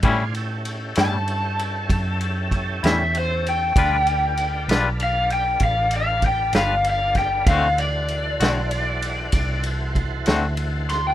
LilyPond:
<<
  \new Staff \with { instrumentName = "Electric slide guitar" } { \time 12/8 \key a \dorian \tempo 4. = 65 r4. a''2. e''8 c''8 g''8~ | g''4. r8 f''8 g''8 f''8 f''8 g''8 f''8 f''8 g''8 | f''8 d''2. r2 c'''16 g''16 | }
  \new Staff \with { instrumentName = "Tonewheel organ" } { \time 12/8 \key a \dorian <d' f' gis' c''>8 <cis' e' g' a'>1~ <cis' e' g' a'>4. | <d' f' a' b'>1. | <e fis' a' c''>1. | }
  \new Staff \with { instrumentName = "Clean electric guitar" } { \time 12/8 \key a \dorian <a, g cis' e'>8 r4 <a, g cis' e'>8 r2 r8 <a, g cis' e'>8 r4 | <g d' f' b'>8 r4 <g d' f' b'>8 r2 r8 <g d' f' b'>8 r4 | <d a c' fis'>8 r4 <d a c' fis'>8 r2 r8 <d a c' fis'>8 r4 | }
  \new Staff \with { instrumentName = "Fingered electric bass" } { \clef bass \time 12/8 \key a \dorian a,4. g,4. fis,4. e,4. | d,4. b,,4. a,,4. g,,4. | d,4. b,,4. c,4. d,4. | }
  \new DrumStaff \with { instrumentName = "Drums" } \drummode { \time 12/8 <bd cymr>8 cymr8 cymr8 <cymr sn>8 cymr8 cymr8 <bd cymr>8 cymr8 <bd cymr>8 <cymr sn>8 cymr8 cymr8 | <bd cymr>8 cymr8 cymr8 <cymr sn>8 cymr8 cymr8 <bd cymr>8 cymr8 <bd cymr>8 <cymr sn>8 cymr8 <bd cymr sn>8 | <bd cymr>8 cymr8 cymr8 <cymr sn>8 cymr8 cymr8 <bd cymr>8 cymr8 <bd cymr>8 <cymr sn>8 cymr8 <cymr sn>8 | }
>>